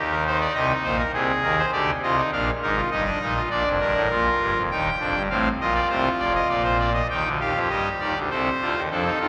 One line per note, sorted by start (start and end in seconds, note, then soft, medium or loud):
0.00 0.47 D#2 medium
0.00 0.47 D#3 medium
0.00 0.15 G4 medium
0.12 0.24 A#4 medium
0.26 1.02 D#4 medium
0.26 0.39 C5 medium
0.40 0.53 D5 medium
0.54 0.73 C2 medium
0.54 0.73 C3 medium
0.54 0.73 D#5 medium
0.83 1.02 A#1 medium
0.83 1.02 A#2 medium
0.83 0.96 C5 medium
0.99 1.12 A#4 medium
1.13 1.32 C2 medium
1.13 1.32 C3 medium
1.13 1.65 G#4 medium
1.43 1.61 D#2 medium
1.43 1.61 D#3 medium
1.43 1.56 A#4 medium
1.58 1.71 C5 medium
1.72 1.91 D2 medium
1.72 1.91 D3 medium
1.72 1.91 G4 medium
1.72 1.91 D5 medium
2.02 2.21 C2 medium
2.02 2.21 C3 medium
2.02 2.15 F4 medium
2.02 2.21 D#5 medium
2.18 2.30 D#4 medium
2.32 2.51 A#1 medium
2.32 2.50 A#2 medium
2.32 2.50 D4 medium
2.32 2.51 F5 medium
2.62 2.81 G#1 medium
2.62 2.80 G#2 medium
2.62 2.75 D#4 medium
2.62 2.81 A#4 medium
2.76 2.89 F4 medium
2.91 3.10 G1 medium
2.91 3.10 G2 medium
2.91 3.04 D#4 medium
2.91 3.42 D#5 medium
3.05 3.19 D4 medium
3.20 3.39 A#1 medium
3.20 3.39 A#2 medium
3.20 3.34 D#4 medium
3.36 3.49 F4 medium
3.50 3.63 A#1 medium
3.50 3.63 A#2 medium
3.50 4.02 D4 medium
3.50 3.69 D5 medium
3.64 3.78 F1 medium
3.64 3.78 F2 medium
3.80 3.93 G1 medium
3.80 3.93 G2 medium
3.80 4.58 A#4 medium
3.94 4.08 A1 medium
3.94 4.08 A2 medium
4.10 4.29 A#1 medium
4.10 4.29 A#2 medium
4.10 4.62 F4 medium
4.40 4.54 G1 medium
4.40 4.54 G2 medium
4.55 4.69 F1 medium
4.55 4.69 F2 medium
4.70 4.89 D#1 medium
4.70 4.89 D#2 medium
4.70 4.89 D#4 medium
4.70 5.23 G5 medium
5.00 5.13 F1 medium
5.00 5.13 F2 medium
5.00 5.19 D4 medium
5.15 5.28 G1 medium
5.15 5.28 G2 medium
5.30 5.49 A1 medium
5.30 5.49 A2 medium
5.30 5.49 C4 medium
5.30 5.49 F5 medium
5.61 5.79 A#1 medium
5.61 5.79 A#2 medium
5.61 6.89 F4 medium
5.61 5.74 D#5 medium
5.75 5.88 D5 medium
5.90 6.09 C2 medium
5.90 6.09 C3 medium
5.90 6.09 C5 medium
6.20 6.39 F1 medium
6.20 6.39 F2 medium
6.20 6.33 D5 medium
6.35 6.48 D#5 medium
6.49 7.02 A#1 medium
6.49 7.01 A#2 medium
6.49 6.63 D5 medium
6.64 6.77 C5 medium
6.79 6.93 D5 medium
6.93 7.07 D#5 medium
7.10 7.23 D#2 medium
7.10 7.23 D#3 medium
7.10 7.29 D#4 medium
7.10 7.29 G5 medium
7.25 7.39 D2 medium
7.25 7.38 D3 medium
7.40 7.53 D#2 medium
7.40 7.53 D#3 medium
7.40 8.18 G4 medium
7.40 7.59 F5 medium
7.54 7.68 F2 medium
7.54 7.68 F3 medium
7.69 7.89 G2 medium
7.69 7.89 G3 medium
7.69 7.89 D#5 medium
8.00 8.14 D#2 medium
8.00 8.14 D#3 medium
8.00 8.19 D5 medium
8.15 8.29 D2 medium
8.15 8.29 D3 medium
8.30 8.49 C2 medium
8.30 8.49 C3 medium
8.30 8.49 A4 medium
8.30 8.82 C5 medium
8.61 8.74 D2 medium
8.61 8.74 D3 medium
8.61 8.80 F4 medium
8.75 8.89 D#2 medium
8.75 8.89 D#3 medium
8.90 9.09 F2 medium
8.90 9.10 F3 medium
8.90 9.04 D4 medium
8.90 9.28 A4 medium
9.05 9.18 D#4 medium
9.20 9.28 D#2 medium
9.20 9.28 D#3 medium
9.20 9.28 F4 medium